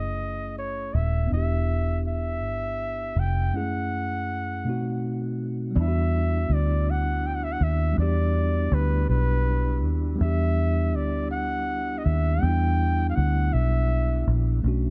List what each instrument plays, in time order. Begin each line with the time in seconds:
Already playing: fingered electric bass F#1, tine electric piano A3 C#4 E4 G#4, flugelhorn D#5
0.58 flugelhorn C#5
0.94 fingered electric bass D#1, flugelhorn E5
1.27 tine electric piano B3 D4
1.32 fingered electric bass E1, tine electric piano E4, flugelhorn E5
1.37 tine electric piano G4
2.07 flugelhorn E5
2.42 fingered electric bass G1
3.16 fingered electric bass F1, flugelhorn G5
3.51 tine electric piano F#2 G#3 C#4
3.55 tine electric piano A3 E4 G#4, flugelhorn F#5
4.64 tine electric piano B2 A3 C4 D#4
4.69 tine electric piano F#4
5.71 tine electric piano G3
5.75 fingered electric bass E2, tonewheel organ G3 D4 E4, tine electric piano B3 D4
5.81 tine electric piano E4, flugelhorn E5
5.88 tine electric piano F#4
6.49 fingered electric bass D2
6.54 flugelhorn D5
6.90 flugelhorn F#5
7.27 flugelhorn G5
7.35 flugelhorn F#5
7.44 flugelhorn E5
7.52 flugelhorn F#5
7.61 fingered electric bass D#2, flugelhorn E5
7.92 tine electric piano G3 B3
7.98 fingered electric bass E2, tine electric piano D4, flugelhorn D5
8.02 tine electric piano G4
8.71 fingered electric bass D2, flugelhorn B4
9.09 fingered electric bass B1, flugelhorn B4
9.83 fingered electric bass D#2
10.15 tine electric piano G3 B3
10.21 fingered electric bass E2, tine electric piano D4, flugelhorn E5
10.25 tine electric piano G4
10.95 fingered electric bass D2, flugelhorn D5
11.31 flugelhorn F#5
11.98 flugelhorn D#5
12.05 fingered electric bass D#2, flugelhorn E5
12.38 tine electric piano G3 B3
12.42 fingered electric bass E2, tine electric piano D4, flugelhorn G5
12.49 tine electric piano E4
13.09 flugelhorn F5
13.15 fingered electric bass D2, flugelhorn F#5
13.53 fingered electric bass B1, flugelhorn E5
14.27 fingered electric bass A#1
14.62 fingered electric bass B1, tine electric piano A3 C#4 D4
14.68 tine electric piano F#4